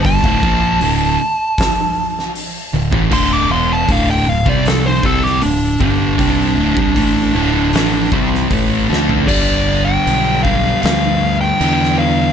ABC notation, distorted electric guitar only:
X:1
M:4/4
L:1/16
Q:1/4=78
K:Dm
V:1 name="Distorted electric guitar" clef=bass
[G,,D,G,] [D,,A,,] [B,,F,B,]2 [D,,A,,D,]2 z8 [D,,A,,] [A,,E,] | [D,,A,,D,]2 [E,,=B,,E,]2 [D,,A,,D,]2 [D,,A,,] [C,G,C]3 [C,G,C]2 [D,,A,,]2 [G,,D,G,]2 | [C,G,C]2 [D,,A,,] [C,G,] [A,,E,A,]2 [D,,A,,D,]2 [A,,E,A,]2 [C,G,C]2 [A,,E,A,]2 [D,A,D]2 | [G,,D,G,]6 [G,,D,G,]6 [G,,D,G,]4 |]